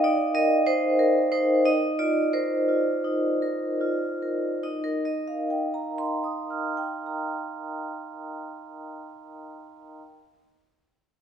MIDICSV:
0, 0, Header, 1, 2, 480
1, 0, Start_track
1, 0, Key_signature, -3, "major"
1, 0, Tempo, 650054
1, 1221, Time_signature, 4, 2, 24, 8
1, 1222, Tempo, 700117
1, 2182, Tempo, 790514
1, 7135, End_track
2, 0, Start_track
2, 0, Title_t, "Vibraphone"
2, 0, Program_c, 0, 11
2, 0, Control_c, 0, 64, 127
2, 0, Note_on_c, 0, 63, 41
2, 0, Note_on_c, 0, 70, 38
2, 0, Note_on_c, 0, 75, 60
2, 0, Note_on_c, 0, 77, 60
2, 0, Note_on_c, 0, 79, 67
2, 29, Note_off_c, 0, 63, 0
2, 29, Note_on_c, 0, 63, 39
2, 30, Note_on_c, 0, 74, 64
2, 165, Note_off_c, 0, 70, 0
2, 256, Note_off_c, 0, 75, 0
2, 256, Note_on_c, 0, 70, 41
2, 256, Note_on_c, 0, 75, 62
2, 260, Note_off_c, 0, 74, 0
2, 402, Note_off_c, 0, 63, 0
2, 491, Note_on_c, 0, 72, 61
2, 492, Note_off_c, 0, 75, 0
2, 492, Note_on_c, 0, 63, 36
2, 636, Note_off_c, 0, 70, 0
2, 731, Note_off_c, 0, 72, 0
2, 733, Note_on_c, 0, 70, 52
2, 876, Note_off_c, 0, 63, 0
2, 972, Note_on_c, 0, 72, 55
2, 974, Note_on_c, 0, 63, 38
2, 975, Note_off_c, 0, 70, 0
2, 1212, Note_off_c, 0, 63, 0
2, 1220, Note_off_c, 0, 72, 0
2, 1221, Note_on_c, 0, 63, 43
2, 1222, Note_on_c, 0, 75, 56
2, 1233, Control_c, 0, 64, 0
2, 1235, Note_off_c, 0, 79, 0
2, 1236, Note_off_c, 0, 77, 0
2, 1353, Control_c, 0, 64, 127
2, 1452, Note_on_c, 0, 65, 33
2, 1452, Note_on_c, 0, 74, 50
2, 1455, Note_off_c, 0, 75, 0
2, 1687, Note_on_c, 0, 72, 48
2, 1689, Note_on_c, 0, 70, 34
2, 1690, Note_off_c, 0, 74, 0
2, 1835, Note_off_c, 0, 65, 0
2, 1929, Note_on_c, 0, 65, 33
2, 2080, Note_off_c, 0, 70, 0
2, 2154, Note_off_c, 0, 63, 0
2, 2175, Note_on_c, 0, 63, 32
2, 2180, Note_off_c, 0, 72, 0
2, 2316, Note_off_c, 0, 65, 0
2, 2404, Note_on_c, 0, 70, 31
2, 2640, Note_on_c, 0, 65, 33
2, 2791, Note_off_c, 0, 70, 0
2, 2892, Note_on_c, 0, 70, 27
2, 3042, Note_off_c, 0, 65, 0
2, 3117, Note_off_c, 0, 63, 0
2, 3140, Note_on_c, 0, 63, 35
2, 3141, Note_on_c, 0, 75, 30
2, 3142, Note_off_c, 0, 70, 0
2, 3156, Control_c, 0, 64, 0
2, 3265, Note_on_c, 0, 70, 35
2, 3295, Control_c, 0, 64, 127
2, 3388, Note_off_c, 0, 75, 0
2, 3395, Note_on_c, 0, 75, 34
2, 3530, Note_on_c, 0, 77, 31
2, 3669, Note_on_c, 0, 79, 30
2, 3812, Note_on_c, 0, 82, 31
2, 3960, Note_on_c, 0, 84, 31
2, 4116, Note_on_c, 0, 87, 26
2, 4275, Note_on_c, 0, 89, 29
2, 4432, Note_off_c, 0, 79, 0
2, 4439, Note_on_c, 0, 79, 30
2, 4608, Note_off_c, 0, 82, 0
2, 4615, Note_on_c, 0, 82, 26
2, 5955, Note_off_c, 0, 84, 0
2, 5956, Note_off_c, 0, 63, 0
2, 5956, Note_off_c, 0, 70, 0
2, 5956, Note_off_c, 0, 75, 0
2, 5956, Note_off_c, 0, 77, 0
2, 5956, Note_off_c, 0, 79, 0
2, 5956, Note_off_c, 0, 87, 0
2, 5956, Note_off_c, 0, 89, 0
2, 5959, Note_off_c, 0, 82, 0
2, 6408, Control_c, 0, 64, 0
2, 7135, End_track
0, 0, End_of_file